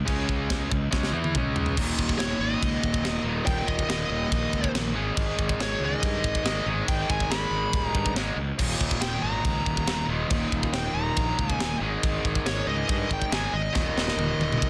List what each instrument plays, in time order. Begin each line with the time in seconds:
0.05 fingered electric bass C#2, distorted electric guitar C#3 G#3 C#4, kick, china
0.29 kick
0.50 kick, snare, china
0.71 fingered electric bass C#2, distorted electric guitar C#3 G#3, kick
0.91 fingered electric bass C#2, distorted electric guitar C#3 G#3 C#4, kick, snare
1.03 snare
1.12 fingered electric bass E2, distorted electric guitar E3 B3 E4
1.24 high tom
1.35 fingered electric bass C#2, distorted electric guitar C#3 G#3 C#4, kick, mid tom
1.56 floor tom
1.66 floor tom
1.76 fingered electric bass D#1, distorted electric guitar D#2 A#2 D#3, kick, crash, china
1.99 fingered electric bass D#1, kick
2.09 kick
2.17 fingered electric bass D#1, lead electric guitar C#5, snare, china
2.39 fingered electric bass G#1, lead electric guitar D#5
2.62 fingered electric bass C#2, kick, china
2.83 fingered electric bass D#1, kick
2.94 kick
3.02 fingered electric bass D#1, snare, china
3.24 fingered electric bass D#1, distorted electric guitar D#2 A#2 D#3
3.45 fingered electric bass D#1, distorted electric guitar D#2 A#2 D#3, lead electric guitar G5, kick, china
3.67 fingered electric bass D#1, lead electric guitar D#5, kick
3.79 kick
3.89 fingered electric bass D#1, lead electric guitar D#5, snare, china
4.10 fingered electric bass D#1
4.31 fingered electric bass A#1, kick, china
4.53 fingered electric bass C#2, kick
4.64 kick
4.73 fingered electric bass A#1, snare, china
4.93 fingered electric bass G#1, distorted electric guitar G#2 D#3 G#3
5.17 fingered electric bass G#1, kick, china
5.39 fingered electric bass G#1, kick
5.49 kick
5.59 fingered electric bass G#1, lead electric guitar C#5, snare, china
5.80 fingered electric bass C#2
5.85 lead electric guitar D#5
6.03 fingered electric bass G2, kick, china
6.24 fingered electric bass G#1, kick
6.35 kick
6.43 fingered electric bass G#1, distorted electric guitar G#2 D#3 G#3, snare, china
6.66 fingered electric bass G#1, distorted electric guitar G#2 D#3 G#3
6.88 fingered electric bass G#1, lead electric guitar G5, kick, china
7.10 fingered electric bass G#1, lead electric guitar G#5, kick
7.20 kick
7.30 fingered electric bass G#1, lead electric guitar B5, snare, china
7.51 fingered electric bass G#1
7.73 fingered electric bass D#1, kick, china
7.86 lead electric guitar A#5
7.94 fingered electric bass G2, kick
8.06 kick
8.14 fingered electric bass G#1, distorted electric guitar G#2 D#3 G#3, snare, china
8.36 fingered electric bass C#2
8.58 fingered electric bass D#1, distorted electric guitar D#2 A#2 D#3, kick, crash, china
8.80 fingered electric bass D#1, kick
8.91 kick
9.01 fingered electric bass D#1, lead electric guitar G5, snare, china
9.22 fingered electric bass G#1, lead electric guitar A#5
9.45 fingered electric bass C#2, kick, china
9.66 fingered electric bass D#1, kick
9.77 kick
9.87 fingered electric bass D#1, snare, china
10.08 fingered electric bass D#1, distorted electric guitar D#2 A#2 D#3
10.30 fingered electric bass D#1, distorted electric guitar D#2 A#2 D#3, kick, china
10.52 fingered electric bass D#1, kick
10.63 kick
10.72 fingered electric bass D#1, lead electric guitar G5, snare, china
10.94 fingered electric bass D#1, lead electric guitar A#5
11.16 fingered electric bass A#1, kick, china
11.39 fingered electric bass C#2, kick
11.50 lead electric guitar G#5, kick
11.59 fingered electric bass D#1, snare, china
11.79 fingered electric bass G#1, distorted electric guitar G#2 D#3 G#3
12.03 fingered electric bass G#1, kick, china
12.24 fingered electric bass G#1, kick
12.35 kick
12.45 fingered electric bass G#1, lead electric guitar C#5, snare, china
12.67 fingered electric bass C#2, lead electric guitar D#5
12.89 fingered electric bass G2, lead electric guitar D#5, kick, china
13.10 fingered electric bass G#1, lead electric guitar G5, kick
13.22 kick
13.30 fingered electric bass G#1, distorted electric guitar G#2 D#3 G#3, lead electric guitar G#5, snare, china
13.53 fingered electric bass G#1, lead electric guitar D#5
13.72 fingered electric bass D#1, distorted electric guitar D#2 A#2 D#3, kick, snare
13.95 fingered electric bass D#1, snare
14.08 snare
14.17 fingered electric bass D#1, high tom
14.39 fingered electric bass D#1, high tom
14.52 mid tom
14.62 fingered electric bass A#1, kick, mid tom